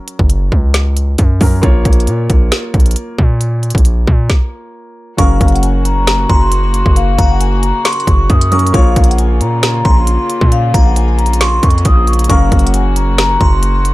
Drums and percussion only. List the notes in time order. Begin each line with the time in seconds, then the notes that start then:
0.08 closed hi-hat
0.19 kick
0.30 closed hi-hat
0.52 kick
0.74 snare, closed hi-hat
0.97 closed hi-hat
1.18 kick, closed hi-hat
1.41 kick, open hi-hat
1.63 kick, closed hi-hat
1.85 kick, closed hi-hat
1.93 closed hi-hat
2.00 closed hi-hat
2.07 closed hi-hat
2.30 kick, closed hi-hat
2.52 snare, closed hi-hat
2.74 kick, closed hi-hat
2.80 closed hi-hat
2.86 closed hi-hat
2.91 closed hi-hat
2.96 closed hi-hat
3.19 kick
3.41 closed hi-hat
3.63 closed hi-hat
3.70 closed hi-hat
3.75 kick, closed hi-hat
3.85 closed hi-hat
4.07 kick
4.30 kick, snare
5.18 kick, closed hi-hat
5.41 kick, closed hi-hat
5.48 closed hi-hat
5.56 closed hi-hat
5.63 closed hi-hat
5.85 closed hi-hat
6.07 snare, closed hi-hat
6.30 kick
6.52 closed hi-hat
6.74 closed hi-hat
6.86 kick
6.96 closed hi-hat
7.18 kick, closed hi-hat
7.41 closed hi-hat
7.63 closed hi-hat
7.85 snare, closed hi-hat
7.93 closed hi-hat
8.00 closed hi-hat
8.07 kick, closed hi-hat
8.30 kick, closed hi-hat
8.41 closed hi-hat
8.52 closed hi-hat, open hi-hat
8.59 closed hi-hat
8.67 closed hi-hat
8.74 kick, closed hi-hat
8.96 kick, closed hi-hat
9.04 closed hi-hat
9.11 closed hi-hat
9.18 closed hi-hat
9.41 closed hi-hat
9.63 snare, closed hi-hat
9.85 kick
10.07 closed hi-hat
10.30 closed hi-hat
10.41 kick
10.52 closed hi-hat
10.74 kick, closed hi-hat
10.96 closed hi-hat
11.19 closed hi-hat
11.26 closed hi-hat
11.33 closed hi-hat
11.41 snare, closed hi-hat
11.63 kick, closed hi-hat
11.70 closed hi-hat
11.78 closed hi-hat
11.85 kick, closed hi-hat
12.07 closed hi-hat, open hi-hat
12.13 closed hi-hat
12.19 closed hi-hat
12.24 closed hi-hat
12.30 kick, closed hi-hat
12.52 kick, closed hi-hat
12.59 closed hi-hat
12.67 closed hi-hat
12.74 closed hi-hat
12.96 closed hi-hat
13.18 snare, closed hi-hat
13.41 kick
13.63 closed hi-hat
13.85 closed hi-hat